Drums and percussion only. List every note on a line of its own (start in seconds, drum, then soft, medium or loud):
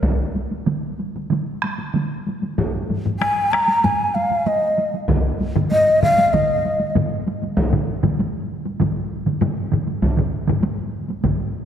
0.03 taiko loud
0.03 taiko high medium
0.35 taiko high soft
0.52 taiko high soft
0.66 taiko mid medium
0.66 taiko high medium
0.99 taiko high soft
1.16 taiko high medium
1.30 taiko mid medium
1.30 taiko high medium
1.62 taiko rim medium
1.62 taiko high soft
1.79 taiko high soft
1.94 taiko mid medium
1.94 taiko high medium
2.27 taiko high medium
2.42 taiko high soft
2.58 taiko medium
2.58 taiko low-mid medium
2.58 taiko high medium
2.90 taiko low-mid medium
2.90 taiko high soft
3.06 taiko low-mid medium
3.06 taiko high soft
3.21 taiko rim medium
3.21 taiko high medium
3.52 taiko rim medium
3.52 taiko high soft
3.68 taiko high soft
3.84 taiko low-mid medium
3.84 taiko high medium
4.16 taiko high soft
4.31 taiko high soft
4.46 taiko high medium
4.78 taiko high medium
4.94 taiko high soft
5.08 taiko loud
5.08 taiko low-mid medium
5.08 taiko mid loud
5.08 taiko high medium
5.41 taiko high medium
5.56 taiko low-mid loud
5.56 taiko mid loud
5.71 taiko high medium
6.03 taiko low-mid loud
6.03 taiko mid medium
6.03 taiko high soft
6.18 taiko high medium
6.34 taiko medium
6.34 taiko low-mid loud
6.34 taiko mid loud
6.34 taiko high medium
6.65 taiko high medium
6.80 taiko high medium
6.95 taiko low-mid loud
6.95 taiko mid medium
6.95 taiko high medium
7.26 taiko high medium
7.42 taiko high medium
7.57 taiko loud
7.57 taiko high medium
7.73 taiko low-mid loud
7.73 taiko mid medium
8.03 taiko low-mid loud
8.03 taiko mid loud
8.03 taiko high medium
8.19 taiko high medium
8.65 taiko high medium
8.80 taiko medium
8.80 taiko low-mid medium
8.80 taiko mid medium
8.80 taiko high medium
8.96 taiko high soft
9.26 taiko low-mid medium
9.26 taiko mid medium
9.26 taiko high medium
9.41 taiko low-mid loud
9.41 taiko mid medium
9.41 taiko high medium
9.72 taiko low-mid medium
9.72 taiko mid medium
9.87 taiko high medium
10.02 taiko medium
10.02 taiko high medium
10.17 taiko low-mid medium
10.17 taiko mid medium
10.47 taiko low-mid loud
10.47 taiko mid medium
10.47 taiko high medium
10.63 taiko high medium
11.08 taiko high medium
11.24 taiko medium
11.24 taiko low-mid medium
11.24 taiko mid medium
11.24 taiko high medium
11.38 taiko high soft